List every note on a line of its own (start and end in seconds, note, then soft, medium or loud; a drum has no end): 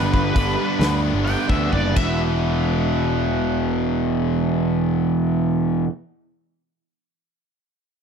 0.00 0.31 G1 medium
0.00 0.32 G2 medium
0.00 0.33 G2 medium
0.00 0.33 D3 medium
0.00 0.34 D3 medium
0.00 0.33 G3 medium
0.00 0.35 G3 medium
0.00 0.35 B3 medium
0.00 0.36 B3 medium
0.00 0.34 D4 medium
0.00 0.37 D4 medium
0.00 0.35 G4 medium
0.00 0.11 B4 medium
0.14 1.00 B4 medium
0.14 kick medium
0.34 0.55 G1 medium
0.34 1.23 G2 medium
0.34 0.79 G2 medium
0.34 1.24 D3 medium
0.34 0.78 D3 medium
0.34 0.59 G3 medium
0.34 1.24 G3 medium
0.34 0.58 B3 medium
0.34 1.25 B3 medium
0.34 1.25 D4 loud
0.34 0.56 D4 medium
0.34 kick loud
0.34 open hi-hat soft
0.38 1.25 G4 loud
0.57 0.79 G3 medium
0.57 0.80 B3 medium
0.57 0.81 D4 medium
0.79 1.11 D2 medium
0.79 1.25 D3 medium
0.79 1.04 G3 medium
0.79 1.03 B3 medium
0.79 1.01 D4 medium
0.79 snare loud
0.79 open hi-hat soft
1.02 1.50 G3 medium
1.02 1.48 B3 medium
1.02 1.46 D4 medium
1.14 1.35 G1 medium
1.25 1.96 G2 medium
1.25 1.97 D3 medium
1.25 1.97 G3 medium
1.25 1.98 B3 medium
1.25 1.98 D4 medium
1.25 1.47 G5 medium
1.25 open hi-hat soft
1.30 1.99 G4 medium
1.47 1.70 D2 medium
1.47 1.71 G3 medium
1.47 1.72 B3 medium
1.47 1.72 D4 medium
1.47 1.72 E5 medium
1.47 kick medium
1.71 1.94 F#1 medium
1.71 1.93 G2 medium
1.71 1.96 D3 medium
1.71 1.96 G3 medium
1.71 1.96 B3 medium
1.71 1.97 D4 medium
1.71 1.95 D5 medium
1.71 kick soft
1.94 5.84 E1 medium
1.94 5.85 E2 medium
1.94 5.88 E2 medium
1.94 5.88 B2 medium
1.94 5.88 B2 loud
1.94 2.20 E5 medium
1.94 kick medium
1.94 crash medium
1.98 5.89 E3 medium
1.98 5.90 E3 medium
1.98 5.90 G#3 medium
1.98 5.91 B3 medium
1.98 5.92 E4 medium